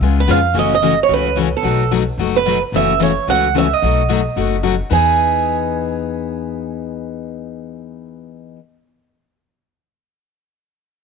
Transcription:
0.01 C#2 C#3 G#3 B3 F4 G#4
0.20 B4
0.28 F2 C#3 G#3 B3 F4 G#4 F5
0.54 F#1 C#3 E3 A3 C#4 F#4
0.59 D#5
0.75 D#5
0.82 C#3 E3 A3 C#4 F#4
1.03 C#5
1.08 C#2 C#3 E3 A3 C#4 F#4
1.14 B4
1.36 C#3 E3 A3 C#4 F#4
1.57 A4
1.63 B1 B2 F#3 A3 D#4 F#4
1.91 B2 F#3 A3 D#4 F#4
2.18 F#1 B2 F#3 A3 D#4 F#4
2.36 B4
2.46 B2 F#3 A3 D#4 F#4
2.72 F#1 C#3 E3 A3 C#4 F#4 E5
2.99 C#3 E3 A3 C#4 F#4 C#5
3.27 C#2 C#3 E3 A3 C#4 F#4 F#5
3.54 C#3 E3 A3 C#4 F#4 E5
3.73 D#5
3.82 B1 B2 F#3 A3 D#4 F#4
4.09 B2 F#3 A3 D#4 F#4
4.36 F#1 B2 F#3 A3 D#4 F#4
4.63 B2 F#3 A3 D#4 F#4
4.90 E2 E3 B3 D#4 G#4 G#5

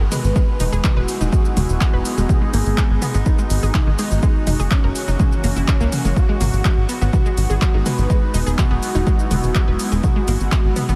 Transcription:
Already playing: D#3 G#3 B3 F#4
0.12 G#3 B4, open hi-hat, mid tom, shaker
0.24 G#1, shaker
0.36 G#3 B3 D#4 E4, kick, shaker
0.60 E1 D#4, open hi-hat, shaker
0.72 E1 G#4, shaker
0.84 F#4, kick, clap, mid tom, shaker
0.97 E1 B4
1.08 open hi-hat, shaker
1.21 E1 D#4, shaker
1.33 G#3, kick, shaker
1.45 shaker
1.57 E1 G#3, open hi-hat, mid tom, shaker
1.69 E1, shaker
1.81 G#3, kick, clap, shaker
1.93 E1 B4
2.05 open hi-hat, shaker
2.18 E1 G#3, shaker
2.29 F#4 G#4, kick, mid tom, shaker
2.42 G#3
2.54 G#1 A#3, open hi-hat, shaker
2.66 G#1, shaker
2.78 G#3, kick, clap, shaker
2.90 G#1
3.02 B3, open hi-hat, mid tom, shaker
3.14 G#1 B3, shaker
3.26 D#4, kick, shaker
3.39 G#3, shaker
3.50 G#1, open hi-hat, shaker
3.63 G#1 G#4, shaker
3.74 kick, clap, mid tom, shaker
3.87 G#1 D#3
3.99 G#3 D#4, open hi-hat, shaker
4.11 G#1, shaker
4.23 E3 G#3 A#3 C#4, kick, shaker
4.47 F#1 D#4, open hi-hat, mid tom, shaker
4.60 F#1 G#4, shaker
4.71 C#4, kick, clap, shaker
4.84 F#1 A#4
4.95 open hi-hat, shaker
5.08 F#1 D#4, shaker
5.20 G#3, kick, mid tom, shaker
5.32 shaker
5.44 F#1 A#3, open hi-hat, shaker
5.56 F#1 E4, shaker
5.68 G#3, kick, clap, shaker
5.80 C#2 A#3, shaker
5.92 open hi-hat, mid tom, shaker
6.05 F#1 G#3, shaker
6.16 G#3 B3 D#4 F#4, kick, shaker
6.29 G#3
6.41 G#1 A#3, open hi-hat, mid tom, shaker
6.53 G#1, shaker
6.65 G#3, kick, clap, shaker
6.77 G#1
6.89 B3, open hi-hat, shaker
7.01 G#1 B3, shaker
7.13 F#4, kick, mid tom, shaker
7.26 G#3, shaker
7.37 G#1, open hi-hat, shaker
7.50 G#1 G#4, shaker
7.62 kick, clap, shaker
7.74 G#1 D#3
7.86 G#3 B4, open hi-hat, mid tom, shaker
7.98 G#1, shaker
8.10 G#3 E4, kick, shaker
8.34 E1 D#4, open hi-hat, shaker
8.46 E1 G#4, shaker
8.58 F#4, kick, clap, mid tom, shaker
8.71 E1 B3
8.83 open hi-hat, shaker
8.95 E1 D#4, shaker
9.07 G#3, kick, shaker
9.19 shaker
9.31 E1 G#3, open hi-hat, mid tom, shaker
9.43 E1, shaker
9.55 G#3, kick, clap, shaker
9.68 E1 B4
9.79 open hi-hat, shaker
9.92 E1 G#3, shaker
10.04 D#3 F#4, kick, mid tom, shaker
10.16 G#3
10.28 G#1 A#3, open hi-hat, shaker
10.40 G#1, shaker
10.52 G#3, kick, clap, shaker
10.65 G#1
10.76 B3, open hi-hat, mid tom, shaker
10.89 G#1 B3, shaker

